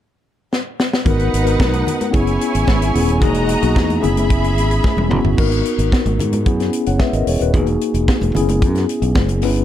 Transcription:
0.53 snare
0.80 snare
0.93 snare
1.04 G#1 B3 D#4 F#4 A#4 B4 F#5, kick, closed hi-hat, low conga
1.19 closed hi-hat
1.33 G#1, closed hi-hat
1.45 B3 D#4 F#4 A#4, closed hi-hat
1.60 B1, kick, snare, muted conga, high conga
1.73 closed hi-hat, high conga
1.87 closed hi-hat, low conga
2.01 closed hi-hat, high conga
2.11 F#1 B3 C#4 E4 G#4 C#5 G#5, kick, closed hi-hat
2.27 closed hi-hat
2.41 closed hi-hat
2.55 G#1, closed hi-hat
2.67 G#1, kick, snare, muted conga, high conga
2.82 closed hi-hat
2.94 D#1 B3 C#4 E4 G#4, open hi-hat, low conga
3.09 closed hi-hat
3.21 E1 A#3 D#4 F#4 G#4 D#5 A#5, kick, closed hi-hat, muted conga, low conga
3.34 closed hi-hat, muted conga
3.49 closed hi-hat
3.61 B1 A#3 D#4 F#4 G#4, closed hi-hat
3.76 E2, kick, snare, muted conga, high conga
3.90 closed hi-hat, muted conga, high conga
4.01 F#1 B3 C#4 E4 G#4 E5 B5, closed hi-hat, low conga
4.17 closed hi-hat, high conga
4.30 kick, closed hi-hat, muted conga
4.44 closed hi-hat, muted conga
4.57 G#1, closed hi-hat
4.71 closed hi-hat
4.84 kick, snare, muted conga, high conga
4.97 E1, high tom, muted conga
5.09 F#1 B3 C#4 E4 F#4, mid tom, low conga
5.24 G1, floor tom
5.37 G#1 A#3 D#4 F#4 A#4, kick, crash, muted conga, low conga
5.44 B3
5.52 closed hi-hat
5.65 closed hi-hat
5.78 G#1, closed hi-hat
5.92 kick, snare
6.06 G#1, closed hi-hat, muted conga, high conga
6.19 G#2, closed hi-hat, low conga
6.33 closed hi-hat, high conga
6.46 F#2 B3 C#4 E4 G#4, kick, closed hi-hat
6.60 snare, closed hi-hat, muted conga
6.73 closed hi-hat
6.86 F#1 C#5 F#5, closed hi-hat
7.00 B4 E5, kick, snare, high conga
7.13 G#1 A#4 D#5, closed hi-hat, muted conga
7.27 E1 G#4 C#5, open hi-hat
7.41 D#1 F#4 B4, closed hi-hat
7.53 E1 A#3 D#4 F#4 G#4, kick, closed hi-hat, muted conga, low conga
7.67 closed hi-hat, muted conga
7.81 closed hi-hat
7.94 E1, closed hi-hat
8.08 kick, snare
8.21 E1, closed hi-hat, high conga
8.34 F#1 B3 C#4 E4 G#4, closed hi-hat, low conga
8.49 closed hi-hat, high conga
8.62 F#2, kick, closed hi-hat
8.75 snare, closed hi-hat, muted conga
8.89 closed hi-hat
9.02 B1, closed hi-hat
9.15 F#1, kick, snare, muted conga, high conga
9.29 closed hi-hat, muted conga
9.42 G1 B3 C#4 E4 B4, open hi-hat
9.56 closed hi-hat

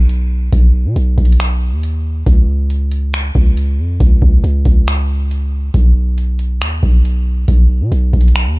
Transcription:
Already playing: B1
0.09 closed hi-hat
0.53 B1, kick, closed hi-hat
0.85 B2
0.96 B1, closed hi-hat
1.18 B1, kick, closed hi-hat
1.25 closed hi-hat
1.32 closed hi-hat
1.40 finger snap, closed hi-hat
1.72 D#2
1.83 closed hi-hat
2.26 C#2, kick, closed hi-hat
2.70 closed hi-hat
2.91 closed hi-hat
3.14 finger snap, closed hi-hat
3.35 C#2, kick
3.57 closed hi-hat
3.79 F2
4.00 C#2, kick, closed hi-hat
4.22 C#2, kick
4.44 C#2, closed hi-hat
4.65 C#2, kick, closed hi-hat
4.87 finger snap, closed hi-hat
5.31 closed hi-hat
5.74 B1, kick, closed hi-hat
6.18 closed hi-hat
6.39 closed hi-hat
6.61 D#2, finger snap, closed hi-hat
6.83 B1, kick
7.05 closed hi-hat
7.48 B1, kick, closed hi-hat
7.81 B2
7.92 B1, closed hi-hat
8.13 B1, kick, closed hi-hat
8.21 closed hi-hat
8.28 closed hi-hat
8.35 finger snap, closed hi-hat
8.46 D#2

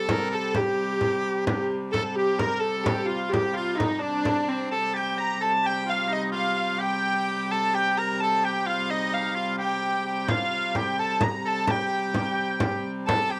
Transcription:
Already playing: C3 G3 A4
0.09 A#4, frame drum
0.31 A4, frame drum
0.55 G4, frame drum
1.01 frame drum
1.24 frame drum
1.47 G4, frame drum
1.70 frame drum
1.92 A4, frame drum
2.16 G4
2.39 A#4, frame drum
2.60 A4, frame drum
2.84 G4, frame drum
3.06 F4
3.11 frame drum
3.29 G4, frame drum
3.54 F4, frame drum
3.75 D#4
3.80 frame drum
4.00 D4, frame drum
4.25 frame drum
4.49 C4
4.71 C3 G3 A4 A5
4.94 G4 G5
5.18 A#5
5.41 A4 A5
5.64 G4 G5
5.87 F4 F5
6.09 D#4
6.13 D#5
6.32 F4 F5
6.57 F5
6.79 G4 G5
7.51 A4 A5
7.74 G4 G5
7.98 A#4 A#5
8.20 A4 A5
8.44 G4 G5
8.66 F4 F5
8.91 D#4 D#5
9.14 F5
9.36 F4 F5
9.58 G4 G5
10.06 G4
10.28 C3 G3 F4 F5, frame drum
10.74 G4 G5, frame drum
10.99 A4 A5, frame drum
11.21 A#5, frame drum
11.45 A4 A5, frame drum
11.67 G4 G5, frame drum
12.14 frame drum
12.39 frame drum
12.60 G4, frame drum
12.85 frame drum
13.07 A4 A5, frame drum
13.30 G4 G5

